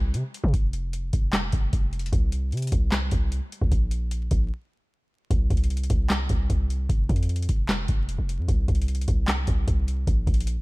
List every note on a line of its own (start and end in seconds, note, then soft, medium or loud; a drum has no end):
0.00 0.15 C2 loud
0.14 0.23 C3 loud
0.14 closed hi-hat medium
0.34 closed hi-hat medium
0.44 0.53 C3 loud
0.44 kick loud
0.54 1.11 F1 loud
0.54 kick loud
0.54 closed hi-hat medium
0.73 closed hi-hat medium
0.93 closed hi-hat medium
1.13 1.51 F1 loud
1.13 kick loud
1.13 closed hi-hat medium
1.33 snare loud
1.33 clap loud
1.33 closed hi-hat medium
1.52 1.72 F1 loud
1.52 kick loud
1.52 closed hi-hat medium
1.73 2.11 F1 loud
1.73 kick medium
1.73 closed hi-hat medium
1.93 closed hi-hat soft
1.99 closed hi-hat medium
2.06 closed hi-hat medium
2.13 2.54 C2 loud
2.13 kick loud
2.13 closed hi-hat medium
2.32 closed hi-hat medium
2.52 2.71 C3 loud
2.52 closed hi-hat medium
2.57 closed hi-hat medium
2.62 closed hi-hat medium
2.67 closed hi-hat medium
2.72 3.10 C2 loud
2.72 kick loud
2.72 closed hi-hat medium
2.92 snare loud
2.92 clap loud
2.92 closed hi-hat medium
3.11 3.41 C2 loud
3.11 kick loud
3.11 closed hi-hat medium
3.32 closed hi-hat medium
3.52 closed hi-hat medium
3.61 3.71 C2 loud
3.61 kick loud
3.71 4.29 A#1 loud
3.71 kick loud
3.71 closed hi-hat medium
3.91 closed hi-hat medium
4.11 closed hi-hat medium
4.31 4.51 A#1 loud
4.31 kick loud
4.31 closed hi-hat medium
5.30 5.50 C2 loud
5.30 kick loud
5.30 closed hi-hat medium
5.50 5.89 C2 loud
5.50 kick medium
5.50 closed hi-hat soft
5.57 closed hi-hat soft
5.64 closed hi-hat medium
5.70 closed hi-hat medium
5.77 closed hi-hat medium
5.84 closed hi-hat medium
5.90 6.28 C2 loud
5.90 kick loud
5.90 closed hi-hat medium
6.10 snare loud
6.10 clap loud
6.10 closed hi-hat medium
6.29 6.49 C2 loud
6.29 kick loud
6.29 closed hi-hat medium
6.50 6.88 C2 loud
6.50 kick medium
6.50 closed hi-hat medium
6.70 closed hi-hat medium
6.89 7.08 F1 loud
6.89 kick loud
6.89 closed hi-hat medium
7.09 7.47 F2 loud
7.09 kick medium
7.09 closed hi-hat soft
7.16 closed hi-hat soft
7.23 closed hi-hat medium
7.29 closed hi-hat medium
7.36 closed hi-hat medium
7.42 closed hi-hat medium
7.49 7.87 F1 loud
7.49 kick loud
7.49 closed hi-hat medium
7.69 snare loud
7.69 clap loud
7.69 closed hi-hat medium
7.88 8.17 F1 loud
7.88 kick loud
7.88 closed hi-hat medium
8.09 closed hi-hat medium
8.19 8.40 F1 loud
8.29 closed hi-hat medium
8.38 8.48 F2 loud
8.48 8.67 C2 loud
8.48 kick loud
8.48 closed hi-hat medium
8.68 9.06 C2 loud
8.68 kick medium
8.68 closed hi-hat soft
8.75 closed hi-hat soft
8.82 closed hi-hat medium
8.88 closed hi-hat medium
8.95 closed hi-hat medium
9.01 closed hi-hat medium
9.08 9.46 C2 loud
9.08 kick loud
9.08 closed hi-hat medium
9.28 snare loud
9.28 clap loud
9.28 closed hi-hat medium
9.47 9.67 C2 loud
9.47 kick loud
9.47 closed hi-hat medium
9.68 10.06 C2 loud
9.68 kick medium
9.68 closed hi-hat medium
9.88 closed hi-hat medium
10.07 10.26 A#1 loud
10.07 kick loud
10.07 closed hi-hat medium
10.27 10.58 A#1 loud
10.27 kick medium
10.27 closed hi-hat soft
10.34 closed hi-hat medium
10.40 closed hi-hat medium
10.47 closed hi-hat medium
10.57 10.62 G#1 medium